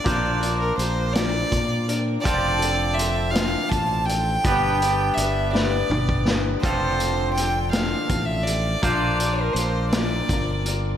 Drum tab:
HH |x-x-x-x-x-x-|x-x-x-x-x-x-|x-x-x-------|x-x-x-x-x-x-|
SD |------o-----|------o-----|------o---o-|------o-----|
T2 |------------|------------|--------o---|------------|
BD |o-------o---|o-------o---|o--------o--|o-------o---|

HH |x-x-x-x-x-x-|
SD |------o-----|
T2 |------------|
BD |o-------o---|